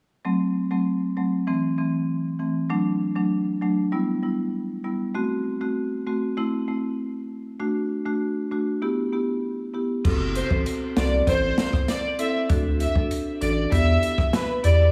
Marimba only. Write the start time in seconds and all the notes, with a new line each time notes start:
0.25 F#3 A3 C4
0.71 F#3 A3 C4
1.17 F#3 A3 C4
1.47 E3 A3 C4
1.78 E3 A3 C4
2.39 E3 A3 C4
2.70 F#3 A3 D4
3.16 F#3 A3 D4
3.62 F#3 A3 D4
3.92 G3 B3 E4
4.23 G3 B3 E4
4.84 G3 B3 E4
5.15 A3 C4 F#4
5.61 A3 C4 F#4
6.07 A3 C4 F#4
6.37 A3 C4 E4
6.68 A3 C4 E4
7.59 A3 D4 F#4
8.05 A3 D4 F#4
8.51 A3 D4 F#4
8.82 B3 E4 G4
9.12 B3 E4 G4
9.74 B3 E4 G4
10.04 C4 F#4 A4
10.50 C4 F#4 A4
10.96 C4 F#4 A4
11.27 C4 E4 A4
12.19 C4 E4 A4
12.49 D4 F#4 A4
12.95 D4 F#4 A4
13.41 D4 F#4 A4
13.72 B3 E4 G4
14.63 B3 E4 G4